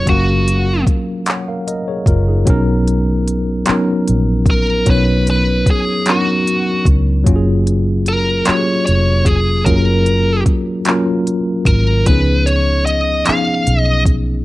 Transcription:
0.00 0.06 F#3 medium
0.00 0.07 A#3 medium
0.00 0.08 C#4 medium
0.00 2.09 F4 medium
0.00 1.89 G#4 medium
0.06 0.83 F#1 medium
0.06 0.86 F#3 medium
0.06 0.86 A#3 medium
0.06 0.87 C#4 medium
0.06 0.84 F#4 medium
0.06 0.88 F5 medium
0.06 kick medium
0.06 closed hi-hat medium
0.11 0.88 A#4 medium
0.48 closed hi-hat soft
0.87 muted fingered electric bass stroke soft
0.87 kick medium
0.87 closed hi-hat soft
1.26 1.47 C#5 soft
1.26 1.46 F#5 medium
1.26 clap loud
1.26 closed hi-hat medium
1.48 1.67 A#4 medium
1.48 1.67 F5 medium
1.67 1.86 A#4 medium
1.67 1.86 D#5 medium
1.67 closed hi-hat soft
1.88 2.07 G#4 medium
1.88 2.06 C#5 medium
2.06 2.43 F#1 medium
2.06 2.27 F4 medium
2.06 2.26 A#4 medium
2.06 kick medium
2.06 closed hi-hat medium
2.28 2.48 D#4 soft
2.28 2.65 G#4 medium
2.45 3.63 B1 loud
2.45 3.26 F#3 medium
2.45 3.26 B3 medium
2.45 3.27 C#4 medium
2.45 3.28 D#4 medium
2.45 kick loud
2.45 closed hi-hat medium
2.50 3.28 A#4 loud
2.88 closed hi-hat soft
3.28 closed hi-hat soft
3.66 4.46 F#3 medium
3.66 4.47 B3 medium
3.66 4.48 C#4 medium
3.66 muted fingered electric bass stroke soft
3.66 clap loud
3.66 closed hi-hat medium
3.70 4.48 D#4 medium
3.70 4.49 A#4 medium
4.08 4.84 A#1 medium
4.08 closed hi-hat soft
4.46 kick medium
4.46 closed hi-hat medium
4.50 4.90 A#4 medium
4.86 5.63 B1 loud
4.86 5.66 F#3 medium
4.86 5.67 B3 medium
4.86 5.67 C#4 medium
4.86 5.68 D#4 medium
4.86 kick medium
4.86 closed hi-hat medium
4.90 5.26 B4 loud
4.90 5.68 C#5 medium
5.27 5.70 B4 medium
5.27 closed hi-hat medium
5.66 muted fingered electric bass stroke soft
5.66 kick medium
5.66 closed hi-hat soft
5.71 6.10 G#4 medium
6.06 6.86 F#3 medium
6.06 6.87 B3 medium
6.06 6.87 C#4 medium
6.06 6.14 D4 soft
6.06 clap loud
6.06 closed hi-hat medium
6.10 6.85 F#4 medium
6.10 6.88 A#4 medium
6.16 6.91 D#4 medium
6.47 closed hi-hat soft
6.85 7.23 C#2 medium
6.85 kick medium
6.85 closed hi-hat medium
7.24 8.43 F#1 loud
7.24 8.05 F#3 medium
7.24 8.06 A#3 medium
7.24 8.07 C#4 medium
7.24 8.07 F4 medium
7.24 kick medium
7.24 closed hi-hat medium
7.30 7.35 F#4 medium
7.36 8.11 G#4 medium
7.67 closed hi-hat soft
8.06 8.49 A#4 medium
8.06 closed hi-hat soft
8.45 9.26 F#3 medium
8.45 9.26 A#3 medium
8.45 9.27 C#4 medium
8.45 9.28 F4 medium
8.45 8.85 C#5 medium
8.45 muted fingered electric bass stroke soft
8.45 clap loud
8.45 closed hi-hat medium
8.50 8.55 G4 medium
8.57 9.32 G#4 medium
8.86 9.64 F1 medium
8.86 9.28 C#5 medium
8.86 closed hi-hat soft
9.25 9.65 G#4 medium
9.25 kick medium
9.25 closed hi-hat medium
9.65 10.43 F#1 loud
9.65 10.46 F#3 medium
9.65 10.46 A#3 medium
9.65 10.47 C#4 medium
9.65 10.47 F4 medium
9.65 10.42 A#4 medium
9.65 kick loud
9.65 closed hi-hat medium
9.69 9.75 G#4 medium
9.76 10.51 A#4 medium
10.06 closed hi-hat soft
10.46 muted fingered electric bass stroke soft
10.46 kick medium
10.46 closed hi-hat soft
10.85 11.66 F#3 medium
10.85 11.67 A#3 medium
10.85 11.67 C#4 medium
10.85 clap loud
10.85 closed hi-hat medium
10.89 11.68 F4 medium
10.89 11.68 A#4 medium
11.27 closed hi-hat soft
11.65 12.03 G#1 loud
11.65 12.07 A#4 medium
11.65 kick medium
11.65 closed hi-hat medium
12.06 13.23 C#2 loud
12.06 12.86 F3 medium
12.06 12.87 B3 medium
12.06 12.87 C#4 medium
12.06 12.88 D#4 medium
12.06 12.48 B4 medium
12.06 kick medium
12.06 closed hi-hat medium
12.11 12.89 G#4 medium
12.46 12.84 C#5 medium
12.46 closed hi-hat medium
12.86 13.26 D#5 loud
12.86 closed hi-hat soft
13.25 14.06 F3 medium
13.25 14.06 B3 medium
13.25 14.07 C#4 medium
13.25 14.08 D#4 medium
13.25 13.82 F5 medium
13.25 muted fingered electric bass stroke soft
13.25 clap loud
13.25 closed hi-hat medium
13.30 14.08 G#4 medium
13.67 14.43 B1 medium
13.67 closed hi-hat soft
13.82 14.02 D#5 medium
14.05 kick medium
14.05 closed hi-hat medium

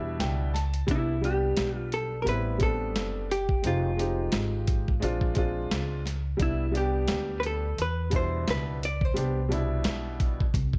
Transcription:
0.00 0.16 E2 medium
0.00 0.50 B2 medium
0.00 0.49 G3 medium
0.00 0.51 D4 medium
0.00 0.51 E4 medium
0.00 0.17 E5 medium
0.19 0.85 C#2 medium
0.19 0.52 G5 medium
0.19 snare medium
0.19 closed hi-hat medium
0.54 0.86 A5 medium
0.54 snare soft
0.54 closed hi-hat medium
0.74 closed hi-hat soft
0.87 1.54 C2 medium
0.87 1.11 G3 medium
0.87 1.12 B3 medium
0.87 1.13 D4 medium
0.87 1.13 E4 medium
0.87 kick loud
0.87 closed hi-hat medium
0.91 1.25 E4 medium
1.21 2.12 G3 medium
1.21 2.12 B3 medium
1.21 2.13 D4 medium
1.21 2.14 G4 medium
1.21 1.77 G4 medium
1.21 closed hi-hat medium
1.57 2.23 B1 medium
1.57 snare loud
1.57 closed hi-hat medium
1.77 1.95 F4 medium
1.92 2.22 A4 medium
1.92 closed hi-hat medium
2.22 2.95 A1 loud
2.22 2.54 G3 medium
2.22 2.55 B3 medium
2.22 2.27 A#4 medium
2.27 2.55 C4 medium
2.27 2.56 E4 medium
2.27 2.62 B4 medium
2.27 closed hi-hat medium
2.58 3.25 G3 medium
2.58 3.26 B3 medium
2.58 3.27 C4 medium
2.58 kick medium
2.58 closed hi-hat medium
2.63 3.27 D4 medium
2.63 3.33 A4 medium
2.95 3.61 F#1 medium
2.95 snare medium
2.95 closed hi-hat medium
3.31 3.63 G4 medium
3.31 closed hi-hat medium
3.49 kick medium
3.62 4.30 F1 medium
3.62 3.87 G#3 medium
3.62 3.88 C4 medium
3.62 3.88 D#4 medium
3.62 3.89 G4 medium
3.62 closed hi-hat medium
3.67 6.03 F4 medium
3.96 4.87 G#3 medium
3.96 4.88 C4 medium
3.96 4.88 D#4 medium
3.96 4.89 G4 medium
3.96 closed hi-hat medium
4.32 4.99 G#1 medium
4.32 snare loud
4.32 closed hi-hat medium
4.67 kick medium
4.67 closed hi-hat medium
4.88 kick medium
5.00 5.68 A#1 loud
5.00 5.30 G#3 medium
5.00 5.30 C4 medium
5.00 5.31 D4 medium
5.00 5.32 F4 medium
5.00 closed hi-hat medium
5.21 kick medium
5.34 6.01 G#3 medium
5.34 6.02 C4 medium
5.34 6.02 D4 medium
5.34 kick medium
5.34 closed hi-hat medium
5.38 6.03 F4 medium
5.71 6.36 C#2 medium
5.71 snare medium
5.71 closed hi-hat medium
6.06 snare soft
6.06 closed hi-hat medium
6.37 7.05 C2 medium
6.37 6.62 G3 medium
6.37 6.63 B3 medium
6.37 6.64 D4 medium
6.37 6.64 E4 medium
6.37 kick medium
6.37 closed hi-hat medium
6.42 6.77 E4 medium
6.72 7.63 G3 medium
6.72 7.63 B3 medium
6.72 7.64 D4 medium
6.72 closed hi-hat medium
6.76 7.65 G4 medium
6.76 7.41 G4 medium
7.08 7.74 D2 medium
7.08 snare loud
7.08 closed hi-hat medium
7.40 7.45 B4 medium
7.40 closed hi-hat medium
7.46 7.80 A4 medium
7.78 8.44 E2 medium
7.78 8.15 B4 loud
7.78 closed hi-hat medium
8.10 8.78 B2 medium
8.10 8.77 G3 medium
8.10 8.78 D4 medium
8.10 8.79 E4 medium
8.10 kick medium
8.10 closed hi-hat medium
8.16 8.50 C5 medium
8.47 9.12 C#2 medium
8.47 8.81 B4 loud
8.47 snare medium
8.47 closed hi-hat medium
8.83 9.05 D5 loud
8.83 closed hi-hat medium
9.01 10.79 C5 medium
9.01 kick medium
9.14 9.81 C2 medium
9.14 9.39 G3 medium
9.14 9.40 B3 medium
9.14 9.40 D4 medium
9.14 9.41 G4 medium
9.14 closed hi-hat medium
9.49 10.40 B2 medium
9.49 10.39 G3 medium
9.49 10.41 D4 medium
9.49 closed hi-hat medium
9.53 10.41 E4 medium
9.84 10.50 B1 medium
9.84 snare loud
9.84 closed hi-hat medium
10.20 kick medium
10.20 closed hi-hat medium
10.40 kick medium
10.54 10.79 C2 loud
10.54 kick medium
10.54 closed hi-hat medium
10.73 kick medium

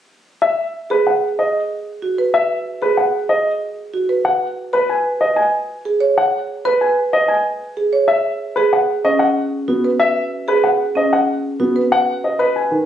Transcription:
0.42 0.63 E5 medium
0.90 1.11 G#4 medium
0.90 1.11 B4 medium
1.07 1.27 F#5 soft
1.39 1.59 D#5 medium
2.02 2.23 F#4 soft
2.18 2.39 B4 soft
2.34 2.55 E5 medium
2.82 3.03 G#4 medium
2.82 3.03 B4 medium
2.97 3.19 F#5 soft
3.29 3.50 D#5 medium
3.94 4.14 F#4 soft
4.09 4.30 B4 soft
4.25 4.46 F#5 medium
4.73 4.94 B4 medium
4.89 5.10 G#5 soft
5.21 5.42 D#5 medium
5.36 5.58 G#5 medium
5.85 6.06 G#4 medium
6.00 6.22 C#5 medium
6.18 6.38 F#5 medium
6.65 6.86 B4 medium
6.81 7.02 G#5 soft
7.13 7.34 D#5 medium
7.28 7.49 G#5 medium
7.77 7.98 G#4 medium
7.93 8.13 C#5 medium
8.08 8.29 E5 medium
8.56 8.77 G#4 medium
8.56 8.77 B4 medium
8.73 8.93 F#5 soft
9.05 9.25 C#4 medium
9.05 9.25 D#5 medium
9.19 9.41 F#5 medium
9.68 9.89 B3 medium
9.68 9.89 F#4 medium
9.85 10.05 B4 medium
10.00 10.21 E5 medium
10.48 10.69 G#4 medium
10.48 10.69 B4 medium
10.64 10.85 F#5 medium
10.95 11.16 C#4 medium
10.95 11.17 D#5 medium
11.13 11.33 F#5 medium
11.60 11.80 B3 medium
11.60 11.80 F#4 medium
11.76 11.96 B4 medium
11.92 12.12 F#5 medium
12.24 12.45 D#5 medium
12.39 12.60 B4 medium
12.56 12.76 G#5 soft
12.71 12.86 D#3 medium

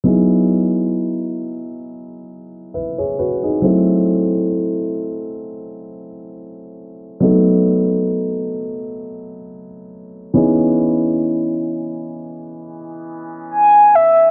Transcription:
0.04 3.59 F#3 medium
0.04 3.59 B3 medium
0.04 2.70 D#4 medium
0.04 2.70 E4 medium
0.04 2.71 G#4 medium
2.74 2.97 B4 soft
2.74 2.97 E5 medium
2.98 3.18 G#4 medium
2.98 3.18 C#5 medium
3.19 3.42 F#4 medium
3.19 3.42 B4 medium
3.43 3.86 D#4 soft
3.43 3.85 G#4 medium
3.62 7.17 F#3 medium
3.62 7.17 A3 medium
3.62 7.17 C4 medium
3.62 7.18 E4 medium
3.62 7.18 A4 medium
7.20 10.30 F#3 medium
7.20 10.31 A3 medium
7.20 10.31 B3 medium
7.20 10.32 D#4 medium
7.20 10.32 A4 medium
10.34 13.88 E3 medium
10.34 13.89 B3 medium
10.34 13.89 C#4 medium
10.34 13.90 D#4 medium
10.34 13.90 G#4 medium
13.50 13.97 G#5 loud
13.95 14.31 E5 medium

